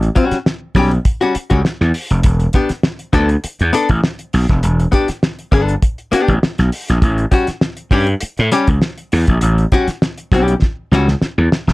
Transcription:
0.02 closed hi-hat
0.15 G3 C#4 F#4, kick, closed hi-hat
0.31 muted slap bass stroke, snare, closed hi-hat
0.46 snare
0.75 B1 G3 C#4 G4, kick, open hi-hat
0.91 closed hi-hat
1.05 kick, closed hi-hat
1.21 G3 C#4 F#4
1.35 muted slap bass stroke, closed hi-hat
1.50 C#2 G3 C#4 F#4, kick, closed hi-hat
1.65 muted slap bass stroke, snare
1.81 E2, snare
1.94 open hi-hat
2.10 F1, closed hi-hat
2.23 E1, kick, closed hi-hat
2.40 closed hi-hat
2.53 B3 D4 G4, kick, closed hi-hat
2.69 muted slap bass stroke, snare, closed hi-hat
2.83 snare
2.99 closed hi-hat
3.13 D2 B3 D4 A4, kick, snare, closed hi-hat
3.29 closed hi-hat
3.44 muted slap bass stroke, closed hi-hat
3.59 E2, closed hi-hat
3.73 B3 D4 A4, closed hi-hat
3.89 A1, kick, closed hi-hat
4.04 snare
4.19 closed hi-hat
4.33 B1, open hi-hat
4.49 F1, kick, snare, closed hi-hat
4.63 E1, closed hi-hat
4.80 closed hi-hat
4.92 B3 D4 G4, kick, closed hi-hat
5.08 muted slap bass stroke, snare, closed hi-hat
5.23 snare
5.39 closed hi-hat
5.52 G1 B3 D4 A4, kick, closed hi-hat
5.68 closed hi-hat
5.82 kick, closed hi-hat
5.98 closed hi-hat
6.12 B3 D4 G4, muted slap bass stroke, closed hi-hat
6.28 A1, kick, closed hi-hat
6.43 muted slap bass stroke, snare
6.58 B1, snare, closed hi-hat
6.72 open hi-hat
6.89 A#1, snare, closed hi-hat
7.02 A1, kick, closed hi-hat
7.18 closed hi-hat
7.32 G3 C#4 F#4, kick, closed hi-hat
7.47 muted slap bass stroke, snare, closed hi-hat
7.61 snare
7.77 closed hi-hat
7.91 G2 G3 C#4 G4, kick, snare, open hi-hat
8.07 closed hi-hat
8.21 muted slap bass stroke, closed hi-hat
8.38 A2, closed hi-hat
8.52 G3 C#4 G4, closed hi-hat
8.67 C#2, kick, closed hi-hat
8.82 snare
8.98 closed hi-hat
9.12 E2, open hi-hat
9.27 A#1, kick, closed hi-hat
9.41 A1, closed hi-hat
9.58 closed hi-hat
9.72 G3 C#4 F#4, kick, closed hi-hat
9.88 muted slap bass stroke, snare, closed hi-hat
10.02 snare
10.17 closed hi-hat
10.32 B1 G3 C#4 G4, kick, closed hi-hat
10.48 closed hi-hat
10.62 kick, snare
10.91 C#2 G3 C#4 F#4, snare
11.08 snare
11.22 muted slap bass stroke, snare
11.38 E2
11.52 snare
11.67 F1, snare

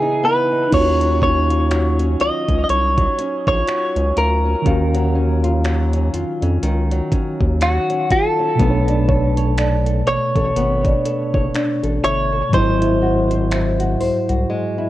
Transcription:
Already playing: C#3 E3 B3 D#4 E4 G#4
0.02 D#4
0.23 B3 B4
0.52 D#4
0.68 C#4 D#4
0.72 D#2 D#3 F4 C#5, kick, closed hi-hat, crash
0.77 F#4
1.01 F#3, closed hi-hat
1.21 C#4 C#5, kick
1.50 F4, closed hi-hat
1.71 F#3, finger snap, closed hi-hat
1.99 C#4, closed hi-hat
2.20 C#2 F4 D#5, closed hi-hat
2.48 C#2 C#4, kick, closed hi-hat
2.64 D#5
2.69 C2 C#5, closed hi-hat
2.98 F#3, kick, closed hi-hat
3.18 C#4, closed hi-hat
3.47 A#1 F4 C#5, kick
3.68 F#3, finger snap, closed hi-hat
3.96 C#2 C#4, closed hi-hat
4.17 D2 F4 A#4, closed hi-hat
4.45 C#4
4.62 D#3 C#4
4.66 D#2 F5, kick, closed hi-hat
4.70 F#4
4.94 F#3, closed hi-hat
5.15 C#4
5.44 F4, closed hi-hat
5.64 F#3, finger snap, closed hi-hat
5.93 C#4, closed hi-hat
6.13 F2 F4, closed hi-hat
6.42 F2 C#4, closed hi-hat
6.63 C#2 D#3, closed hi-hat
6.91 F#3, closed hi-hat
7.12 C#4, kick, closed hi-hat
7.41 D#2, kick
7.61 F#3 F#4, finger snap, closed hi-hat
7.90 C#4, closed hi-hat
8.10 F4 A4, kick, closed hi-hat
8.39 C#4
8.55 B2 A3
8.60 B1 B3 D4, kick, closed hi-hat
8.64 B4
8.70 C#5
8.88 D4, closed hi-hat
9.09 A4 C#5, kick
9.37 C#5, closed hi-hat
9.58 D4, finger snap, closed hi-hat
9.86 A4, closed hi-hat
10.07 A1 C#5, closed hi-hat
10.36 A1 A4, kick, closed hi-hat
10.56 G#1 B3, closed hi-hat
10.85 D4, kick, closed hi-hat
11.05 A4, closed hi-hat
11.34 F#1 C#5, kick
11.55 D4, finger snap, closed hi-hat
11.83 A1 A4, closed hi-hat
12.04 G1 C#5 E5, closed hi-hat
12.32 A4
12.49 G#2 F#3 G#3
12.53 G#1 E4 C5, kick, closed hi-hat
12.57 C5
12.81 E4, closed hi-hat
13.02 F#4
13.30 C5, closed hi-hat
13.51 E4, finger snap, closed hi-hat
13.80 F#4, closed hi-hat
14.00 C2 C5, open hi-hat
14.29 C2 F#4, closed hi-hat
14.50 G#3
14.78 E4

